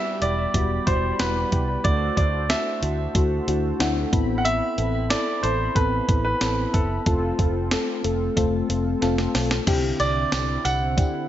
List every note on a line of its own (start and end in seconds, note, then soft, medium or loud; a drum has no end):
0.00 0.21 G3 medium
0.00 0.21 B3 medium
0.00 0.22 E4 medium
0.00 0.55 F#4 loud
0.00 1.81 G4 medium
0.00 1.81 D5 medium
0.00 0.23 E5 medium
0.00 1.81 B5 medium
0.21 0.45 E1 medium
0.21 0.48 G3 medium
0.21 0.48 B3 medium
0.21 0.48 E4 medium
0.21 0.49 G4 medium
0.21 0.89 D5 medium
0.21 closed hi-hat medium
0.54 0.78 E1 loud
0.54 0.81 G3 medium
0.54 0.81 B3 medium
0.54 0.81 E4 medium
0.54 0.81 F#4 medium
0.54 kick medium
0.54 closed hi-hat medium
0.86 1.11 E1 medium
0.86 1.13 G3 medium
0.86 1.13 B3 medium
0.86 1.14 E4 medium
0.86 1.14 F#4 medium
0.86 1.20 C5 medium
0.86 kick medium
0.86 closed hi-hat medium
1.19 1.43 E1 medium
1.19 1.46 G3 medium
1.19 1.46 B3 medium
1.19 1.46 E4 medium
1.19 1.46 F#4 medium
1.19 1.87 B4 medium
1.19 snare loud
1.19 closed hi-hat medium
1.51 1.76 C2 medium
1.51 1.78 G3 medium
1.51 1.79 B3 medium
1.51 1.79 E4 medium
1.51 1.79 G4 medium
1.51 kick medium
1.51 closed hi-hat medium
1.84 2.08 D2 loud
1.84 2.11 A3 medium
1.84 2.11 D4 medium
1.84 2.12 E4 medium
1.84 4.09 F#4 medium
1.84 2.12 F#4 medium
1.84 4.09 A4 medium
1.84 4.09 C5 medium
1.84 2.15 D5 loud
1.84 kick loud
1.84 closed hi-hat medium
2.17 2.52 D2 medium
2.17 2.44 A3 medium
2.17 2.44 D4 medium
2.17 2.44 E4 medium
2.17 2.44 F#4 medium
2.17 2.51 D5 medium
2.17 kick medium
2.17 closed hi-hat medium
2.49 2.76 A3 medium
2.49 2.77 D4 medium
2.49 2.77 E4 medium
2.49 2.77 F#4 medium
2.49 4.09 E5 medium
2.49 snare loud
2.49 closed hi-hat medium
2.82 3.06 D2 medium
2.82 3.09 A3 medium
2.82 3.09 D4 medium
2.82 3.09 E4 medium
2.82 3.10 F#4 medium
2.82 closed hi-hat medium
3.15 3.39 D2 loud
3.15 3.42 A3 medium
3.15 3.42 D4 medium
3.15 3.42 E4 medium
3.15 3.42 F#4 loud
3.15 kick medium
3.15 closed hi-hat medium
3.47 3.71 D2 loud
3.47 3.74 A3 medium
3.47 3.74 D4 medium
3.47 3.75 E4 medium
3.47 3.75 F#4 medium
3.47 closed hi-hat medium
3.80 4.04 D2 loud
3.80 4.07 A3 loud
3.80 4.07 D4 loud
3.80 4.07 E4 loud
3.80 4.07 F#4 loud
3.80 snare loud
3.80 closed hi-hat medium
4.12 4.60 A1 medium
4.12 4.66 B3 medium
4.12 4.66 C4 medium
4.12 7.02 C4 medium
4.12 7.02 E4 medium
4.12 4.66 E4 medium
4.12 4.67 A4 medium
4.12 7.02 B5 medium
4.12 kick loud
4.12 closed hi-hat medium
4.38 4.45 F#5 medium
4.45 5.12 E5 loud
4.45 closed hi-hat medium
4.78 5.13 A1 medium
4.78 5.05 B3 medium
4.78 5.05 C4 medium
4.78 5.05 E4 medium
4.78 5.05 A4 medium
4.78 closed hi-hat medium
5.10 5.37 B3 medium
5.10 5.38 C4 medium
5.10 5.38 E4 medium
5.10 5.38 A4 medium
5.10 5.44 D5 medium
5.10 snare loud
5.10 closed hi-hat medium
5.43 5.67 A1 loud
5.43 5.70 B3 medium
5.43 5.70 C4 medium
5.43 5.70 E4 medium
5.43 5.70 A4 medium
5.43 5.73 C5 medium
5.43 closed hi-hat medium
5.75 5.99 A1 medium
5.75 6.02 B3 medium
5.75 6.03 C4 medium
5.75 6.03 E4 medium
5.75 6.03 A4 medium
5.75 6.23 B4 medium
5.75 kick medium
5.75 closed hi-hat medium
6.08 6.32 A1 medium
6.08 6.35 B3 medium
6.08 6.35 C4 medium
6.08 6.36 E4 medium
6.08 6.36 A4 medium
6.08 kick medium
6.08 closed hi-hat medium
6.25 6.75 B4 medium
6.41 6.65 A1 medium
6.41 6.68 B3 medium
6.41 6.68 C4 medium
6.41 6.68 E4 medium
6.41 6.68 A4 loud
6.41 snare loud
6.41 closed hi-hat medium
6.73 6.97 F#1 medium
6.73 7.00 B3 medium
6.73 7.00 C4 medium
6.73 7.01 E4 medium
6.73 7.35 A4 medium
6.73 7.01 A4 medium
6.73 kick medium
6.73 closed hi-hat medium
7.06 7.30 F1 medium
7.06 7.33 A3 medium
7.06 7.33 C4 medium
7.06 9.63 C4 medium
7.06 9.63 F4 medium
7.06 7.33 F4 medium
7.06 9.63 A4 medium
7.06 7.33 A4 loud
7.06 kick loud
7.06 closed hi-hat medium
7.39 7.74 F1 medium
7.39 7.66 A3 medium
7.39 7.66 C4 medium
7.39 7.66 F4 medium
7.39 7.66 A4 medium
7.39 kick medium
7.39 closed hi-hat medium
7.71 7.98 A3 medium
7.71 7.98 C4 medium
7.71 7.98 F4 medium
7.71 7.99 A4 medium
7.71 snare loud
7.71 closed hi-hat medium
8.03 8.28 F1 medium
8.03 8.31 A3 medium
8.03 8.31 C4 medium
8.03 8.31 F4 medium
8.03 8.31 A4 medium
8.03 closed hi-hat medium
8.36 8.60 F1 loud
8.36 8.63 A3 loud
8.36 8.63 C4 loud
8.36 8.64 F4 medium
8.36 8.64 A4 loud
8.36 kick medium
8.36 closed hi-hat medium
8.69 8.93 F1 medium
8.69 8.96 A3 medium
8.69 8.96 C4 medium
8.69 8.96 F4 medium
8.69 8.96 A4 medium
8.69 closed hi-hat medium
9.01 9.26 F1 medium
9.01 9.28 A3 loud
9.01 9.29 C4 medium
9.01 9.29 F4 medium
9.01 9.29 A4 loud
9.01 snare medium
9.01 closed hi-hat medium
9.18 snare medium
9.34 9.58 B1 medium
9.34 9.61 A3 medium
9.34 9.61 C4 medium
9.34 9.62 F4 medium
9.34 9.62 A4 medium
9.34 snare medium
9.34 open hi-hat medium
9.51 snare medium
9.67 9.91 C2 loud
9.67 11.29 D3 medium
9.67 9.94 C4 loud
9.67 11.29 C4 medium
9.67 9.94 D4 medium
9.67 11.29 E4 medium
9.67 9.94 E4 medium
9.67 9.94 G4 loud
9.67 kick loud
9.67 closed hi-hat medium
9.67 crash medium
9.67 tambourine soft
9.99 10.23 C2 medium
9.99 10.26 C4 medium
9.99 10.27 D4 medium
9.99 10.27 E4 medium
9.99 10.27 G4 medium
9.99 10.61 D5 loud
9.99 closed hi-hat medium
9.99 tambourine soft
10.32 10.56 C2 medium
10.32 10.59 C4 medium
10.32 10.59 D4 medium
10.32 10.59 E4 medium
10.32 10.60 G4 medium
10.32 snare loud
10.32 closed hi-hat medium
10.32 tambourine medium
10.64 11.00 C2 loud
10.64 10.91 C4 medium
10.64 10.92 D4 medium
10.64 10.92 E4 medium
10.64 10.92 G4 medium
10.64 11.29 F#5 loud
10.64 closed hi-hat medium
10.64 tambourine medium
10.97 11.24 C4 medium
10.97 11.24 D4 medium
10.97 11.24 E4 medium
10.97 11.25 G4 medium
10.97 kick medium
10.97 closed hi-hat medium
10.97 tambourine soft